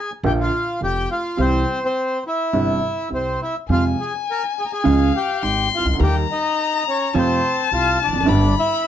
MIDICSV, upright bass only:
0, 0, Header, 1, 2, 480
1, 0, Start_track
1, 0, Key_signature, -4, "minor"
1, 0, Tempo, 574713
1, 1158, Time_signature, 4, 2, 24, 8
1, 7408, End_track
2, 0, Start_track
2, 0, Title_t, "Upright bass"
2, 0, Program_c, 0, 32
2, 196, Note_on_c, 0, 34, 103
2, 398, Note_off_c, 0, 34, 0
2, 680, Note_on_c, 0, 29, 69
2, 880, Note_off_c, 0, 29, 0
2, 1155, Note_on_c, 0, 36, 97
2, 1358, Note_off_c, 0, 36, 0
2, 2116, Note_on_c, 0, 31, 89
2, 2318, Note_off_c, 0, 31, 0
2, 2597, Note_on_c, 0, 36, 63
2, 2803, Note_off_c, 0, 36, 0
2, 3082, Note_on_c, 0, 41, 88
2, 3287, Note_off_c, 0, 41, 0
2, 4054, Note_on_c, 0, 37, 101
2, 4255, Note_off_c, 0, 37, 0
2, 4532, Note_on_c, 0, 32, 69
2, 4734, Note_off_c, 0, 32, 0
2, 4838, Note_on_c, 0, 36, 51
2, 4884, Note_off_c, 0, 36, 0
2, 4889, Note_on_c, 0, 37, 63
2, 4950, Note_off_c, 0, 37, 0
2, 4955, Note_on_c, 0, 38, 80
2, 5010, Note_off_c, 0, 38, 0
2, 5015, Note_on_c, 0, 39, 107
2, 5214, Note_off_c, 0, 39, 0
2, 5971, Note_on_c, 0, 41, 113
2, 6169, Note_off_c, 0, 41, 0
2, 6444, Note_on_c, 0, 36, 71
2, 6642, Note_off_c, 0, 36, 0
2, 6734, Note_on_c, 0, 28, 53
2, 6793, Note_off_c, 0, 28, 0
2, 6798, Note_on_c, 0, 29, 70
2, 6845, Note_off_c, 0, 29, 0
2, 6850, Note_on_c, 0, 30, 84
2, 6913, Note_off_c, 0, 30, 0
2, 6918, Note_on_c, 0, 31, 108
2, 7118, Note_off_c, 0, 31, 0
2, 7408, End_track
0, 0, End_of_file